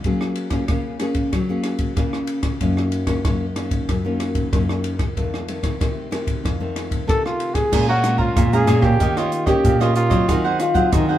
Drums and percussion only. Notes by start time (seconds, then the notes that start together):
0.04 kick, ride
0.21 cross-stick
0.36 ride
0.50 kick, cross-stick, ride
0.68 kick, cross-stick, ride
1.00 cross-stick, ride
1.15 kick, ride
1.33 kick, cross-stick, ride
1.63 cross-stick, ride
1.79 kick, ride
1.97 kick, cross-stick, ride
2.13 cross-stick
2.27 ride
2.43 kick, cross-stick, ride
2.61 kick, ride
2.77 cross-stick
2.92 ride
3.07 kick, cross-stick, ride
3.25 kick, cross-stick, ride
3.56 cross-stick, ride
3.71 kick, ride
3.89 kick, cross-stick, ride
4.20 cross-stick, ride
4.35 kick, ride
4.53 kick, cross-stick, ride
4.69 cross-stick
4.84 ride
4.99 kick, cross-stick, ride
5.17 kick, ride
5.34 cross-stick
5.48 ride
5.63 kick, cross-stick, ride
5.81 kick, cross-stick, ride
6.12 cross-stick, ride
6.27 kick, ride
6.45 kick, cross-stick, ride
6.76 cross-stick, ride
6.91 kick, ride
7.09 kick, cross-stick, ride
7.26 cross-stick
7.40 ride
7.55 kick, cross-stick, ride
7.73 kick, cross-stick, crash
8.04 cross-stick, closed hi-hat
8.19 kick
8.37 kick, cross-stick, closed hi-hat
8.53 closed hi-hat
8.68 cross-stick, closed hi-hat
8.82 kick, cross-stick
9.00 kick, closed hi-hat
9.17 cross-stick, closed hi-hat
9.32 closed hi-hat
9.47 kick, cross-stick, closed hi-hat
9.65 kick, closed hi-hat
9.81 cross-stick, closed hi-hat
9.96 closed hi-hat
10.11 kick, cross-stick, closed hi-hat
10.29 kick, cross-stick, closed hi-hat
10.60 cross-stick, closed hi-hat
10.75 kick, closed hi-hat
10.93 kick, cross-stick, closed hi-hat